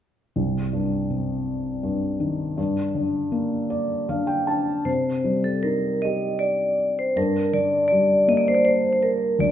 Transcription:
0.36 2.54 C2 soft
0.73 1.82 G2 soft
1.10 2.53 C3 soft
1.83 2.55 G2 soft
2.20 2.56 D#3 soft
2.57 4.83 G2 medium
2.95 4.07 D3 soft
3.32 4.83 A#3 soft
3.70 4.06 D5 medium
4.09 4.84 D3 soft
4.09 4.27 F5 soft
4.27 4.46 G5 medium
4.47 4.85 D4 soft
4.47 4.84 A5 medium
4.85 7.12 C3 soft
4.85 5.46 C5 medium
5.24 6.75 G3 soft
5.44 5.65 A4 soft
5.63 7.13 D#4 soft
5.63 6.04 A#4 medium
6.02 7.14 G4 soft
6.02 6.42 D#5 medium
6.39 6.93 D5 medium
6.99 7.18 C5 medium
7.16 9.34 G2 medium
7.16 7.55 A#4 medium
7.53 8.96 D3 soft
7.53 7.87 D5 medium
7.88 8.29 D5 medium
7.92 9.35 G3 soft
8.28 9.35 A#3 soft
8.28 8.38 D#5 medium
8.37 8.47 D5 medium
8.48 8.56 C5 medium
8.54 8.64 D5 medium
8.65 8.92 C5 medium
8.93 9.00 C5 soft
9.03 9.36 A#4 medium
9.39 9.52 D2 medium
9.39 9.52 D5 medium

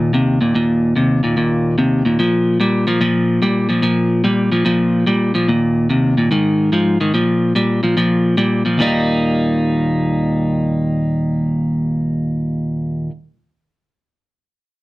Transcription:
0.00 0.11 D#2 medium
0.00 0.11 A#2 medium
0.13 0.38 D#2 medium
0.13 0.39 C3 medium
0.41 0.53 D#2 medium
0.41 0.53 A#2 medium
0.55 0.93 D#2 medium
0.55 0.93 A#2 loud
0.96 1.20 D#2 medium
0.96 1.21 C3 medium
1.23 1.35 D#2 medium
1.23 1.36 A#2 medium
1.37 1.75 D#2 medium
1.37 1.75 A#2 medium
1.78 2.03 D#2 medium
1.78 2.03 C3 medium
2.05 2.17 D#2 medium
2.05 2.18 A#2 medium
2.19 2.57 A#2 medium
2.19 2.58 F3 loud
2.60 2.85 A#2 medium
2.60 2.85 G3 medium
2.87 3.00 A#2 medium
2.87 3.00 F3 medium
3.01 3.39 A#2 medium
3.01 3.40 F3 medium
3.42 3.67 A#2 medium
3.42 3.67 G3 medium
3.69 3.81 A#2 medium
3.69 3.82 F3 medium
3.82 4.21 A#2 medium
3.82 4.22 F3 medium
4.24 4.49 A#2 medium
4.24 4.49 G3 medium
4.52 4.64 A#2 medium
4.52 4.64 F3 medium
4.65 5.04 A#2 medium
4.65 5.04 F3 loud
5.07 5.32 A#2 medium
5.07 5.32 G3 medium
5.34 5.47 A#2 medium
5.34 5.47 F3 medium
5.48 5.87 D#2 medium
5.48 5.87 A#2 medium
5.89 6.14 D#2 medium
5.89 6.15 C3 medium
6.17 6.29 D#2 medium
6.17 6.30 A#2 medium
6.31 6.69 G#2 medium
6.31 6.70 D#3 medium
6.72 6.97 G#2 medium
6.72 6.97 F3 medium
7.00 7.12 G#2 medium
7.00 7.13 D#3 medium
7.14 7.52 A#2 medium
7.14 7.52 F3 medium
7.55 7.80 A#2 medium
7.55 7.80 G3 medium
7.83 7.95 A#2 medium
7.83 7.95 F3 medium
7.97 8.35 A#2 medium
7.97 8.35 F3 medium
8.37 8.62 A#2 medium
8.37 8.62 G3 medium
8.65 8.77 A#2 medium
8.65 8.78 F3 medium
8.78 13.08 D#2 loud
8.78 13.09 A#2 medium
8.78 13.10 D#3 medium
8.78 13.11 G3 loud
8.78 13.11 A#3 loud
8.78 13.12 D#4 loud

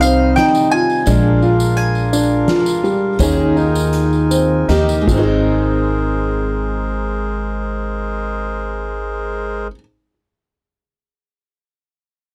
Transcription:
0.00 0.34 C2 loud
0.00 1.05 C3 medium
0.00 1.06 D#3 medium
0.00 1.05 G3 medium
0.00 1.06 C4 medium
0.00 0.37 C4 medium
0.00 1.03 D#4 medium
0.00 1.07 D#4 medium
0.00 1.03 C5 medium
0.00 1.05 D#5 medium
0.00 0.36 F5 medium
0.00 tambourine loud
0.36 0.72 D#4 medium
0.36 0.71 G5 medium
0.36 snare medium
0.36 closed hi-hat medium
0.55 tambourine medium
0.71 1.07 F4 medium
0.71 1.76 G#5 loud
0.71 tambourine soft
0.90 tambourine soft
1.06 2.44 A#1 loud
1.06 3.19 A#2 loud
1.06 3.18 F3 medium
1.06 3.19 G#3 medium
1.06 1.41 D4 medium
1.06 3.20 D4 medium
1.06 3.18 D4 medium
1.06 4.66 F4 medium
1.06 5.04 A#4 medium
1.06 3.18 F5 medium
1.06 kick loud
1.06 closed hi-hat medium
1.06 tambourine loud
1.42 2.11 F4 medium
1.42 tambourine soft
1.60 tambourine medium
1.77 4.65 G#5 medium
1.77 closed hi-hat medium
1.95 tambourine soft
2.13 2.47 D4 medium
2.13 tambourine loud
2.48 2.83 F4 medium
2.48 snare medium
2.48 closed hi-hat medium
2.66 tambourine medium
2.84 3.19 G3 medium
2.84 tambourine soft
3.19 4.65 D#2 loud
3.19 4.67 D#3 loud
3.19 4.68 A#3 loud
3.19 3.56 C#4 medium
3.19 5.06 D#4 medium
3.19 4.69 D#4 loud
3.19 4.70 G#4 loud
3.19 4.68 G#5 medium
3.19 kick loud
3.19 closed hi-hat medium
3.19 tambourine loud
3.56 4.29 D#4 medium
3.56 tambourine soft
3.75 tambourine medium
3.93 closed hi-hat medium
3.93 tambourine soft
4.13 tambourine soft
4.30 4.68 C4 medium
4.30 tambourine loud
4.68 5.06 D#2 loud
4.68 5.01 D#3 medium
4.68 5.08 A#3 medium
4.68 5.07 D#4 medium
4.68 5.08 D#4 loud
4.68 5.07 G4 medium
4.68 5.08 G4 loud
4.68 5.08 G5 medium
4.68 snare medium
4.68 closed hi-hat medium
4.68 tambourine soft
4.89 tambourine medium
5.01 9.65 G#3 medium
5.07 9.67 G#1 medium
5.07 9.67 G#3 medium
5.07 9.68 G#3 medium
5.07 9.74 C4 medium
5.07 9.71 C4 medium
5.07 9.67 G#4 medium
5.07 9.68 A#4 medium
5.07 9.67 C5 medium
5.07 kick loud
5.07 crash medium
5.07 tambourine medium
5.15 9.75 D#4 medium
5.15 9.80 D#4 medium
5.15 9.79 G#4 medium
5.23 9.87 A#4 medium

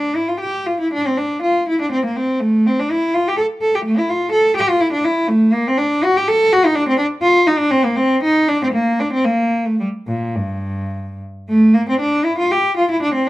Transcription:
0.00 0.17 D4 medium
0.16 0.29 E4 medium
0.28 0.42 F4 medium
0.40 0.66 G4 medium
0.66 0.79 F4 medium
0.80 0.93 E4 medium
0.93 1.05 D4 medium
1.07 1.19 C4 medium
1.18 1.43 D4 medium
1.42 1.67 F4 medium
1.68 1.80 E4 medium
1.81 1.93 D4 medium
1.92 2.04 C4 medium
2.05 2.17 A#3 medium
2.16 2.41 C4 medium
2.40 2.66 A3 medium
2.66 2.79 C4 medium
2.80 2.92 D4 medium
2.91 3.15 E4 medium
3.14 3.27 F4 medium
3.28 3.40 G4 medium
3.37 3.45 A4 medium
3.61 3.74 A4 medium
3.75 3.87 G4 medium
3.84 3.97 A3 medium
3.98 4.10 E4 medium
4.10 4.33 F4 medium
4.32 4.56 A4 medium
4.56 4.68 G4 medium
4.69 4.81 F4 medium
4.81 4.93 E4 medium
4.92 5.04 D4 medium
5.04 5.29 E4 medium
5.28 5.54 A3 medium
5.53 5.66 A#3 medium
5.68 5.80 C4 medium
5.78 6.03 D4 loud
6.03 6.16 F#4 medium
6.17 6.29 G4 medium
6.28 6.52 A4 loud
6.53 6.64 F#4 medium
6.65 6.77 D#4 medium
6.75 6.87 D4 medium
6.88 6.99 C4 medium
6.98 7.06 D4 medium
7.22 7.46 F4 loud
7.47 7.59 D#4 medium
7.58 7.71 D4 medium
7.71 7.84 C4 loud
7.85 7.97 A#3 medium
7.96 8.22 C4 medium
8.23 8.47 D#4 medium
8.48 8.60 D4 medium
8.63 8.67 C4 medium
8.73 8.98 A#3 medium
9.00 9.12 D4 medium
9.13 9.25 C4 medium
9.25 9.66 A#3 medium
9.66 9.80 A3 medium
9.80 9.88 G3 medium
10.08 10.36 A#2 medium
10.35 11.20 G2 medium
11.49 11.72 A3 medium
11.74 11.87 A#3 medium
11.89 12.00 C4 medium
12.00 12.25 D4 medium
12.24 12.37 E4 medium
12.38 12.50 F4 medium
12.51 12.76 G4 medium
12.77 12.89 F4 medium
12.91 13.02 E4 medium
13.02 13.14 D4 medium
13.14 13.27 C4 medium

